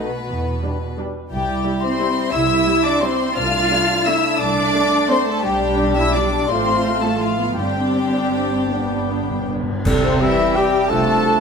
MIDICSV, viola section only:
0, 0, Header, 1, 2, 480
1, 0, Start_track
1, 0, Key_signature, 0, "major"
1, 0, Tempo, 337079
1, 424, Time_signature, 3, 2, 24, 8
1, 3794, Tempo, 347222
1, 9554, Tempo, 380469
1, 12914, Tempo, 349447
1, 15533, End_track
2, 0, Start_track
2, 0, Title_t, "Viola section"
2, 0, Program_c, 0, 48
2, 901, Note_on_c, 0, 55, 43
2, 902, Note_on_c, 0, 62, 43
2, 1014, Note_off_c, 0, 55, 0
2, 1016, Note_off_c, 0, 62, 0
2, 1390, Note_on_c, 0, 62, 49
2, 1392, Note_on_c, 0, 55, 44
2, 1504, Note_off_c, 0, 62, 0
2, 1506, Note_off_c, 0, 55, 0
2, 2340, Note_on_c, 0, 64, 44
2, 2341, Note_on_c, 0, 55, 51
2, 2454, Note_off_c, 0, 64, 0
2, 2455, Note_off_c, 0, 55, 0
2, 2838, Note_on_c, 0, 55, 52
2, 2843, Note_on_c, 0, 64, 56
2, 2952, Note_off_c, 0, 55, 0
2, 2957, Note_off_c, 0, 64, 0
2, 3789, Note_on_c, 0, 64, 55
2, 3792, Note_on_c, 0, 55, 60
2, 3900, Note_off_c, 0, 64, 0
2, 3903, Note_off_c, 0, 55, 0
2, 4276, Note_on_c, 0, 64, 56
2, 4279, Note_on_c, 0, 55, 55
2, 4386, Note_off_c, 0, 64, 0
2, 4390, Note_off_c, 0, 55, 0
2, 5238, Note_on_c, 0, 62, 62
2, 5243, Note_on_c, 0, 57, 56
2, 5349, Note_off_c, 0, 62, 0
2, 5353, Note_off_c, 0, 57, 0
2, 5731, Note_on_c, 0, 57, 59
2, 5731, Note_on_c, 0, 62, 63
2, 5841, Note_off_c, 0, 57, 0
2, 5841, Note_off_c, 0, 62, 0
2, 6669, Note_on_c, 0, 57, 63
2, 6669, Note_on_c, 0, 62, 59
2, 6779, Note_off_c, 0, 62, 0
2, 6780, Note_off_c, 0, 57, 0
2, 7162, Note_on_c, 0, 62, 60
2, 7164, Note_on_c, 0, 57, 66
2, 7272, Note_off_c, 0, 62, 0
2, 7274, Note_off_c, 0, 57, 0
2, 7625, Note_on_c, 0, 62, 76
2, 7631, Note_on_c, 0, 55, 72
2, 8547, Note_off_c, 0, 62, 0
2, 8550, Note_off_c, 0, 55, 0
2, 8609, Note_on_c, 0, 62, 57
2, 8611, Note_on_c, 0, 55, 62
2, 9066, Note_off_c, 0, 62, 0
2, 9067, Note_off_c, 0, 55, 0
2, 9075, Note_on_c, 0, 57, 68
2, 9077, Note_on_c, 0, 65, 66
2, 10002, Note_off_c, 0, 65, 0
2, 10004, Note_off_c, 0, 57, 0
2, 10017, Note_on_c, 0, 65, 53
2, 10023, Note_on_c, 0, 57, 55
2, 10252, Note_on_c, 0, 59, 60
2, 10253, Note_off_c, 0, 57, 0
2, 10478, Note_off_c, 0, 65, 0
2, 10486, Note_on_c, 0, 60, 61
2, 10486, Note_on_c, 0, 62, 62
2, 10487, Note_off_c, 0, 59, 0
2, 11920, Note_off_c, 0, 62, 0
2, 11932, Note_on_c, 0, 59, 60
2, 11935, Note_on_c, 0, 62, 51
2, 11938, Note_off_c, 0, 60, 0
2, 13141, Note_off_c, 0, 59, 0
2, 13142, Note_off_c, 0, 62, 0
2, 13408, Note_on_c, 0, 69, 73
2, 13854, Note_off_c, 0, 69, 0
2, 13891, Note_on_c, 0, 67, 58
2, 14840, Note_off_c, 0, 67, 0
2, 14851, Note_on_c, 0, 65, 64
2, 15311, Note_off_c, 0, 65, 0
2, 15316, Note_on_c, 0, 69, 60
2, 15533, Note_off_c, 0, 69, 0
2, 15533, End_track
0, 0, End_of_file